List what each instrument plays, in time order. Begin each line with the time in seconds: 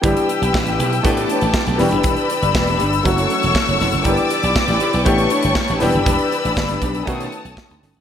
0.02 slap bass G1, grand piano E3 G3 B3 D4 G4, clean electric guitar E4 G4, string section G4 B4 G5 E6, kick, closed hi-hat
0.06 clean electric guitar B4
0.17 closed hi-hat
0.29 muted clean electric guitar stroke, closed hi-hat
0.42 slap bass B1, clean electric guitar E4 G4 B4, closed hi-hat
0.54 slap bass A1, muted clean electric guitar stroke, kick, snare
0.67 clean electric guitar E4 G4 B4, closed hi-hat
0.80 slap bass B1, clean electric guitar E4 G4 B4, closed hi-hat
0.93 muted clean electric guitar stroke, closed hi-hat
1.03 slap bass A2, grand piano E3 A3 B3 D4 G4, string section A4 A5 D6, kick, closed hi-hat
1.17 clean electric guitar D4 G4 B4, closed hi-hat
1.29 clean electric guitar D4 G4 C#5, closed hi-hat
1.41 slap bass A1, muted clean electric guitar stroke, closed hi-hat
1.54 muted clean electric guitar stroke, kick, snare
1.66 slap bass B1, clean electric guitar G4 B4, closed hi-hat
1.71 clean electric guitar D4
1.77 slap bass E1, grand piano E3 G3 B3 D4 G4, clean electric guitar D4, string section B4 D5 B5 E6, snare, open hi-hat
1.82 clean electric guitar G4 B4
1.91 slap bass F#1, muted clean electric guitar stroke, closed hi-hat
2.03 slap bass E1, clean electric guitar D4 G4 B4, kick, closed hi-hat
2.17 closed hi-hat
2.30 muted clean electric guitar stroke, closed hi-hat
2.42 slap bass G1, clean electric guitar D4 G4 B4, closed hi-hat
2.55 slap bass E1, muted clean electric guitar stroke, kick, snare
2.67 clean electric guitar D4 G4 B4, closed hi-hat
2.79 slap bass G1, clean electric guitar D4 G4 B4, closed hi-hat
2.92 muted clean electric guitar stroke, closed hi-hat
3.03 slap bass F#1, grand piano E3 F#3 A3 C#4 F#4, string section A4 C#5 F#5 C#6, muted clean electric guitar stroke, kick, closed hi-hat
3.17 clean electric guitar C#4 E4 A4, closed hi-hat
3.29 clean electric guitar C#4 E4 B4, closed hi-hat
3.43 slap bass E1, muted clean electric guitar stroke, closed hi-hat
3.55 kick, snare
3.68 slap bass F#1, clean electric guitar C#4 E4 A4, closed hi-hat
3.80 slap bass E1, clean electric guitar C#4 E4 A4, snare, open hi-hat
3.92 slap bass F#1, muted clean electric guitar stroke, closed hi-hat
4.02 slap bass G1, grand piano E3 G3 A#3 D4 G4, clean electric guitar E4, string section D5 G5 D6, kick, closed hi-hat
4.07 grand piano B3, clean electric guitar G4 B4, string section B4
4.17 closed hi-hat
4.30 muted clean electric guitar stroke, closed hi-hat
4.43 slap bass B1, clean electric guitar E4 G4 B4, closed hi-hat
4.56 kick, snare
4.68 slap bass A1, clean electric guitar E4 G4 B4, closed hi-hat
4.80 clean electric guitar E4 G4 B4, closed hi-hat
4.93 slap bass B1, muted clean electric guitar stroke, closed hi-hat
5.05 slap bass A1, grand piano E3 A3 B3 D4 G4, string section C#5 A5 C#6, kick, closed hi-hat
5.18 clean electric guitar D4 G4 B4, closed hi-hat
5.30 clean electric guitar D4 G4 C#5, closed hi-hat
5.42 slap bass G1, muted clean electric guitar stroke, closed hi-hat
5.55 muted clean electric guitar stroke, kick, snare
5.68 slap bass A1, clean electric guitar D4 G4 B4, closed hi-hat
5.80 slap bass E1, grand piano E3 G3 B3 D4 G4, clean electric guitar D4 G4, string section B4 D5 B5 E6, snare, open hi-hat
5.84 clean electric guitar B4
5.92 slap bass F#1, muted clean electric guitar stroke, closed hi-hat
6.06 slap bass E1, clean electric guitar D4 G4 B4, kick, closed hi-hat
6.19 closed hi-hat
6.32 muted clean electric guitar stroke, closed hi-hat
6.44 slap bass A1, clean electric guitar D4 G4 B4, closed hi-hat
6.57 slap bass G1, muted clean electric guitar stroke, kick, snare
6.69 clean electric guitar D4 G4 B4, closed hi-hat
6.82 slap bass B1, clean electric guitar D4 G4 B4, kick, closed hi-hat
6.95 muted clean electric guitar stroke, closed hi-hat
7.05 slap bass B2, grand piano D#3 A3 B3 C#4 F#4, string section A4 C#5 A5 D#6, kick, closed hi-hat
7.20 clean electric guitar C#4 D#4 A4, closed hi-hat
7.32 clean electric guitar C#4 D#4 B4, closed hi-hat
7.45 slap bass B1, muted clean electric guitar stroke, closed hi-hat
7.57 kick, snare
7.70 slap bass D2, clean electric guitar C#4 D#4 A4, closed hi-hat
7.83 slap bass G1, clean electric guitar C#4 D#4 A4, snare, open hi-hat
7.95 slap bass A1, muted clean electric guitar stroke, closed hi-hat